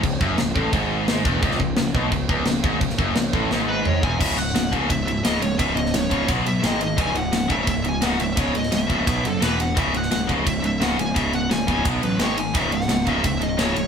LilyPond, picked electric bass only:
\new Staff \with { instrumentName = "Picked electric bass" } { \clef bass \time 4/4 \key cis \minor \tempo 4 = 173 cis,,8 fis,,8 cis,,8 a,,8 gis,,4. e,,8 | cis,,8 cis,,8 cis,,8 b,,8 cis,,8 cis,,8 cis,,8 gis,,8 | cis,,8 fis,,8 cis,,8 a,,8 gis,,4. e,,8 | cis,,8 cis,,8 cis,,8 cis,,8 cis,,4 cis,,8 cis,,8 |
cis,,8 cis,,8 cis,,8 cis,,8 b,,8 b,,8 gis,,4 | cis,,8 cis,,8 cis,,8 cis,,8 cis,,4 cis,,8 cis,,8 | cis,,8 cis,,8 cis,,8 cis,,8 b,,8 fis,,8 e,,4 | cis,,8 cis,,8 cis,,8 cis,,8 cis,,4 cis,,8 cis,,8 |
cis,,8 cis,,8 cis,,8 cis,,8 b,,8 a,,8 gis,,4 | cis,,8 cis,,8 cis,,8 cis,,8 cis,,4 cis,,8 cis,,8 | }